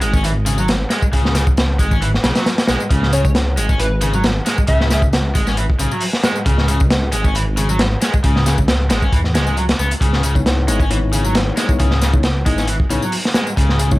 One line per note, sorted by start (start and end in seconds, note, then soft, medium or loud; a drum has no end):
0.01 0.85 G#1 loud
0.01 0.13 G#3 medium
0.01 closed hi-hat medium
0.01 tambourine medium
0.14 0.23 C#4 medium
0.14 kick medium
0.14 tambourine soft
0.24 0.30 E3 medium
0.24 closed hi-hat medium
0.24 tambourine soft
0.46 0.56 C#3 loud
0.46 closed hi-hat medium
0.46 tambourine medium
0.58 0.68 F#3 medium
0.58 tambourine soft
0.68 snare loud
0.68 closed hi-hat medium
0.68 tambourine soft
0.90 1.02 G#3 medium
0.90 snare soft
0.90 closed hi-hat medium
0.90 tambourine medium
1.02 kick medium
1.02 tambourine soft
1.13 1.81 C#2 loud
1.13 1.34 C#3 medium
1.13 kick loud
1.13 closed hi-hat medium
1.13 tambourine soft
1.25 snare soft
1.35 1.45 C#3 loud
1.35 snare soft
1.35 closed hi-hat medium
1.35 tambourine medium
1.47 kick medium
1.47 tambourine soft
1.57 snare loud
1.57 closed hi-hat medium
1.57 tambourine soft
1.79 2.19 G#1 loud
1.79 1.91 G#3 medium
1.79 kick loud
1.79 closed hi-hat medium
1.79 tambourine medium
1.91 2.01 C#4 medium
1.91 kick medium
1.91 tambourine soft
2.02 2.08 E3 medium
2.02 closed hi-hat medium
2.02 tambourine soft
2.14 snare soft
2.24 2.32 B1 loud
2.24 2.34 C#3 loud
2.24 snare loud
2.24 closed hi-hat medium
2.24 tambourine medium
2.35 2.46 F#3 medium
2.35 snare loud
2.35 closed hi-hat medium
2.35 tambourine soft
2.46 snare medium
2.46 closed hi-hat medium
2.46 tambourine soft
2.58 snare loud
2.58 closed hi-hat medium
2.68 2.77 B1 medium
2.68 2.80 G#3 medium
2.68 snare loud
2.68 closed hi-hat medium
2.68 tambourine medium
2.80 tambourine soft
2.91 3.59 C#2 loud
2.91 3.12 C#3 medium
2.91 kick loud
2.91 closed hi-hat medium
2.91 tambourine soft
3.03 snare soft
3.13 3.23 C#3 medium
3.13 3.21 C#5 medium
3.13 closed hi-hat medium
3.13 tambourine medium
3.25 3.31 C#5 medium
3.25 kick loud
3.25 tambourine soft
3.35 snare loud
3.35 closed hi-hat medium
3.35 tambourine soft
3.57 4.41 G#1 loud
3.57 3.69 G#3 medium
3.57 closed hi-hat medium
3.57 tambourine medium
3.69 3.78 C#4 medium
3.69 kick medium
3.69 tambourine soft
3.79 3.85 E3 medium
3.79 3.95 B4 loud
3.79 closed hi-hat loud
3.79 tambourine soft
4.01 4.11 C#3 loud
4.01 closed hi-hat medium
4.01 tambourine medium
4.13 4.23 F#3 medium
4.13 tambourine soft
4.24 snare loud
4.24 closed hi-hat medium
4.24 tambourine soft
4.46 4.57 G#3 medium
4.46 snare soft
4.46 closed hi-hat medium
4.46 tambourine medium
4.58 kick medium
4.58 tambourine soft
4.67 5.37 C#2 loud
4.67 4.89 C#3 medium
4.67 5.02 E5 loud
4.67 kick loud
4.67 closed hi-hat medium
4.67 tambourine soft
4.81 snare soft
4.90 5.00 C#3 loud
4.90 snare soft
4.90 closed hi-hat medium
4.90 tambourine medium
5.02 kick medium
5.02 tambourine soft
5.13 snare loud
5.13 closed hi-hat medium
5.13 tambourine soft
5.35 5.74 G#1 medium
5.35 5.46 G#3 medium
5.35 kick loud
5.35 closed hi-hat medium
5.35 tambourine medium
5.47 5.56 C#4 medium
5.47 snare soft
5.47 tambourine soft
5.57 5.63 E3 medium
5.57 closed hi-hat medium
5.57 tambourine soft
5.70 kick medium
5.79 5.88 B1 loud
5.79 5.89 C#3 loud
5.79 closed hi-hat medium
5.79 tambourine medium
5.91 6.01 F#3 medium
5.91 tambourine soft
6.01 open hi-hat medium
6.01 tambourine soft
6.13 snare soft
6.24 6.35 G#3 medium
6.24 snare loud
6.24 closed hi-hat medium
6.24 tambourine medium
6.36 tambourine soft
6.46 7.14 C#2 loud
6.46 6.67 C#3 medium
6.46 kick loud
6.46 closed hi-hat medium
6.46 tambourine soft
6.58 snare soft
6.68 6.78 C#3 loud
6.68 closed hi-hat medium
6.68 tambourine medium
6.80 kick medium
6.80 tambourine soft
6.90 snare loud
6.90 closed hi-hat medium
6.90 tambourine soft
7.12 7.97 G#1 loud
7.12 7.24 G#3 medium
7.12 closed hi-hat medium
7.12 tambourine medium
7.24 7.34 C#4 medium
7.24 kick medium
7.24 tambourine soft
7.35 7.41 E3 medium
7.35 closed hi-hat medium
7.35 tambourine soft
7.57 7.67 C#3 loud
7.57 closed hi-hat medium
7.57 tambourine medium
7.69 7.79 F#3 medium
7.69 tambourine soft
7.79 snare loud
7.79 closed hi-hat medium
7.79 tambourine soft
8.02 8.13 G#3 medium
8.02 snare medium
8.02 closed hi-hat medium
8.02 tambourine medium
8.13 kick medium
8.13 tambourine soft
8.24 8.92 C#2 loud
8.24 8.45 C#3 medium
8.24 kick loud
8.24 closed hi-hat medium
8.24 tambourine soft
8.36 snare soft
8.46 8.56 C#3 loud
8.46 snare soft
8.46 closed hi-hat medium
8.46 tambourine medium
8.58 kick medium
8.58 tambourine soft
8.68 snare loud
8.68 closed hi-hat medium
8.68 tambourine soft
8.90 9.14 G#1 loud
8.90 9.02 G#3 medium
8.90 snare loud
8.90 closed hi-hat medium
8.90 tambourine medium
9.02 9.12 C#4 medium
9.02 kick medium
9.02 tambourine soft
9.12 9.37 E2 medium
9.12 9.19 E3 medium
9.12 kick loud
9.12 closed hi-hat medium
9.12 tambourine soft
9.24 snare soft
9.35 9.74 C#2 loud
9.35 9.46 G#3 loud
9.35 snare medium
9.35 closed hi-hat medium
9.35 tambourine medium
9.47 9.55 G#3 loud
9.47 tambourine soft
9.57 9.63 F#3 medium
9.57 closed hi-hat medium
9.57 tambourine soft
9.69 snare medium
9.69 closed hi-hat medium
9.79 9.95 C#2 medium
9.79 9.90 B3 loud
9.79 tambourine medium
9.91 closed hi-hat medium
9.91 tambourine soft
10.01 10.70 C#2 loud
10.01 10.23 C#3 medium
10.01 kick loud
10.01 closed hi-hat medium
10.01 tambourine soft
10.13 snare soft
10.23 10.34 C#3 loud
10.23 closed hi-hat medium
10.23 tambourine medium
10.35 10.66 B3 medium
10.35 10.66 D#4 medium
10.35 10.66 E4 medium
10.35 10.66 C#5 medium
10.35 kick medium
10.35 tambourine soft
10.46 snare loud
10.46 closed hi-hat medium
10.46 tambourine soft
10.68 11.52 G#1 loud
10.68 10.80 G#3 medium
10.68 10.82 B3 loud
10.68 10.82 D#4 medium
10.68 10.82 E4 medium
10.68 10.82 C#5 loud
10.68 closed hi-hat medium
10.68 tambourine medium
10.80 10.90 C#4 medium
10.80 kick loud
10.80 tambourine soft
10.90 10.96 E3 medium
10.90 11.66 B3 medium
10.90 11.66 D#4 medium
10.90 11.66 E4 medium
10.90 11.66 C#5 loud
10.90 closed hi-hat medium
10.90 tambourine soft
11.13 11.23 C#3 loud
11.13 closed hi-hat medium
11.13 tambourine medium
11.25 11.35 F#3 medium
11.25 tambourine soft
11.35 snare loud
11.35 closed hi-hat medium
11.35 tambourine soft
11.57 11.68 G#3 medium
11.57 snare medium
11.57 closed hi-hat medium
11.57 tambourine medium
11.69 11.89 B3 medium
11.69 11.89 D#4 medium
11.69 11.89 E4 medium
11.69 11.89 C#5 medium
11.69 kick loud
11.69 tambourine soft
11.79 12.48 C#2 loud
11.79 12.01 C#3 medium
11.79 kick loud
11.79 closed hi-hat medium
11.79 tambourine soft
11.91 snare soft
12.01 12.11 C#3 medium
12.01 snare soft
12.01 closed hi-hat medium
12.01 tambourine medium
12.13 12.26 B3 medium
12.13 12.26 D#4 medium
12.13 12.26 E4 medium
12.13 12.26 C#5 medium
12.13 kick medium
12.13 tambourine soft
12.23 snare loud
12.23 closed hi-hat medium
12.23 tambourine soft
12.46 12.85 G#1 loud
12.46 12.57 G#3 medium
12.46 12.67 B3 medium
12.46 12.67 D#4 medium
12.46 12.67 E4 medium
12.46 12.67 D#5 loud
12.46 kick loud
12.46 closed hi-hat medium
12.46 tambourine medium
12.58 12.67 C#4 medium
12.58 snare soft
12.58 tambourine soft
12.67 12.74 E3 medium
12.67 closed hi-hat medium
12.67 tambourine soft
12.80 kick medium
12.90 12.99 B1 loud
12.90 13.00 C#3 medium
12.90 13.04 B3 loud
12.90 13.04 D#4 medium
12.90 13.04 E4 medium
12.90 13.04 C#5 loud
12.90 closed hi-hat medium
12.90 tambourine medium
13.02 13.12 F#3 medium
13.02 tambourine soft
13.12 open hi-hat medium
13.12 tambourine soft
13.25 snare soft
13.34 13.46 G#3 medium
13.34 snare loud
13.34 closed hi-hat medium
13.34 tambourine medium
13.47 tambourine soft
13.57 13.99 C#2 loud
13.57 13.79 C#3 medium
13.57 kick loud
13.57 closed hi-hat medium
13.57 tambourine soft
13.69 snare soft
13.79 13.89 C#3 medium
13.79 closed hi-hat medium
13.79 tambourine medium
13.91 13.99 B3 medium
13.91 13.99 D#4 medium
13.91 13.99 E4 medium
13.91 13.99 C#5 medium
13.91 kick loud
13.91 tambourine soft